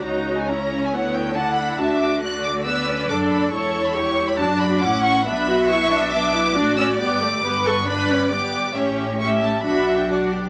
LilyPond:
<<
  \new Staff \with { instrumentName = "Violin section" } { \time 4/4 \key d \major \tempo 4 = 138 ais''8. gis''16 ais''8. gis''16 fis''8 g''8 a''8 b''8 | a''8 d'''8 fis'''8 d'''8 e'''4 d'''8 b''8 | cis'''8. b''16 cis'''8. b''16 a''8 b''8 d'''8 cis'''8 | \key b \minor b''4 cis'''4 d'''4. e'''8 |
d'''4. cis'''8 b''4 d'''4 | e''4 cis'''8 a''8 b''8. g''16 fis''8. d''16 | }
  \new Staff \with { instrumentName = "Violin section" } { \time 4/4 \key d \major cis''2. fis''4 | e''4 d''2. | cis''2 d''4 fis''4 | \key b \minor e''2. d''4~ |
d''4 b'4 d''2 | cis''4 e''4 e''4 d''4 | }
  \new Staff \with { instrumentName = "Viola section" } { \time 4/4 \key d \major << { fis'4 e'2 d'4 | fis'4 fis'4 b'4 a'4 | a'4 g'4 fis'4 e'4 | \key b \minor d'8 fis'8 e'8 d'8 d'8 e'8 fis'4 |
g'4 g'8 a'8 b'4 g'4 | g'4 g'4 fis'4 fis'8 g'8 | } \\ { dis'4 cis'4 b4 e'4 | d'4 a4 b8 cis'8 d'4 | e'4 e'4 d'4 cis'4 | b2 b4 d'8 cis'8 |
b8 a8 b4 d'8 cis'8 b4 | cis'4 cis'4 d'4 d'4 | } >> }
  \new Staff \with { instrumentName = "Cello section" } { \clef bass \time 4/4 \key d \major cis2 d2 | d2. fis,4 | e,2 fis,4 a,4 | \key b \minor b,2. a,4 |
g,1 | a,2 b,2 | }
  \new Staff \with { instrumentName = "Double bass section" } { \clef bass \time 4/4 \key d \major cis,2 d,2 | d,2. fis,,4 | e,,2 fis,,4 a,,4 | \key b \minor b,,2. a,,4 |
g,,1 | a,,2 b,,2 | }
>>